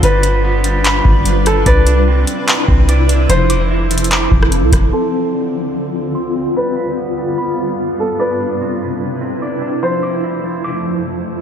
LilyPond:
<<
  \new Staff \with { instrumentName = "Felt piano" } { \time 4/4 \key d \dorian \tempo 4 = 147 b'2.~ b'8 a'8 | b'1 | c''2. r4 | a'1 |
b'2.~ b'8 a'8 | b'1 | c''2. r4 | }
  \new Staff \with { instrumentName = "Clean electric guitar" } { \time 4/4 \key d \dorian g8 b''8 b8 g8 b''2 | d''8 d'8 c'4. c'8 d''8 d'8 | f8 d'''8 e'8 f8 d'''2 | c'''8 c'8 d4. d8 c'''8 c'8 |
g8 b''8 b8 g8 b''2 | d''8 d'8 c'4. c'8 d''8 d'8 | f8 d'''8 e'8 f8 d'''2 | }
  \new Staff \with { instrumentName = "Ambient pad" } { \time 4/4 \key d \dorian << { b'1 | e'1 | a'1 | f'1 |
f'1 | e'1~ | e'1 | } \\ { <g d' f'>1 | <c b'>1 | <f c'>1 | <d, d c'>1 |
<g, g b>1 | <c d' b'>1 | <f, f a>1 | } >> }
  \new Staff \with { instrumentName = "808-style bass" } { \clef bass \time 4/4 \key d \dorian g,,2~ g,,8 g,,4. | c,4. r4 c,4. | f,,2~ f,,8 f,,8. c,16 f,,8 | r1 |
r1 | r1 | r1 | }
  \new DrumStaff \with { instrumentName = "Drums" } \drummode { \time 4/4 hh8 hh8 r8 hh8 <hc hh>8 bd8 hh8 <hh ss>8 | <hh bd>8 hh8 r8 hh8 <hc hh>8 bd8 hh8 hh8 | hh8 hh8 \tuplet 3/2 { r16 r16 r16 hh16 hh16 hh16 } <hc hh>8 bd16 ss16 hh8 <hh bd ss>8 | r4 r4 r4 r4 |
r4 r4 r4 r4 | r4 r4 r4 r4 | r4 r4 r4 r4 | }
>>